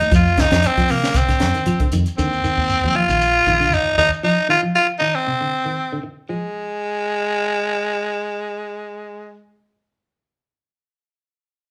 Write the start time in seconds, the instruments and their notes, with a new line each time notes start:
Already playing: tenor saxophone D#4
0.00 muted clean electric guitar stroke, closed hi-hat, high conga, shekere
0.11 fingered electric bass F2, clean electric guitar F3, kick, closed hi-hat, claves, shekere
0.15 tenor saxophone F4
0.27 shekere
0.37 clean electric guitar D#3, tenor saxophone D#4, kick, snare, closed hi-hat, shekere
0.51 fingered electric bass F2, clean electric guitar F3, snare, closed hi-hat, claves
0.62 closed hi-hat, shekere
0.67 tenor saxophone C4
0.77 fingered electric bass F3, kick, snare, closed hi-hat
0.88 clean electric guitar C3, tenor saxophone A#3, open hi-hat, claves, shekere
1.04 fingered electric bass D3, snare, shekere
1.14 clean electric guitar C3, tenor saxophone C4, kick, closed hi-hat, shekere
1.28 clean electric guitar D3, kick, snare, closed hi-hat, claves
1.40 fingered electric bass F2, snare, closed hi-hat, shekere
1.54 clean electric guitar D#3, closed hi-hat, shekere
1.66 fingered electric bass F3, closed hi-hat, claves, shekere
1.80 clean electric guitar D3, kick, closed hi-hat
1.92 fingered electric bass F2, clean electric guitar D#3, closed hi-hat, shekere
2.06 closed hi-hat, shekere
2.17 fingered electric bass D#2, clean electric guitar D3, tenor saxophone C4, shekere
2.33 shekere
2.44 clean electric guitar D#3, shekere
2.58 fingered electric bass D#2
2.69 shekere
2.84 fingered electric bass D#2, clean electric guitar F3
2.95 clean electric guitar F3, tenor saxophone F4, shekere
3.09 fingered electric bass A#1, clean electric guitar D#3, shekere
3.21 shekere
3.46 fingered electric bass A#1, clean electric guitar D#3, shekere
3.60 clean electric guitar D3, shekere
3.72 fingered electric bass D#2, tenor saxophone D#4, shekere
3.97 fingered electric bass D#2, clean electric guitar D#3, tenor saxophone D#4, shekere
4.11 muted fingered electric bass stroke, shekere
4.23 clean electric guitar F3, tenor saxophone D#4
4.49 clean electric guitar D#3, tenor saxophone F4
4.63 clean electric guitar F3
4.75 tenor saxophone F4
4.99 clean electric guitar D#3, tenor saxophone D#4
5.15 tenor saxophone C4
5.27 clean electric guitar C3
5.41 clean electric guitar D3
5.65 clean electric guitar D#3
5.92 clean electric guitar D3
6.03 muted clean electric guitar stroke
6.29 clean electric guitar F3, tenor saxophone G#3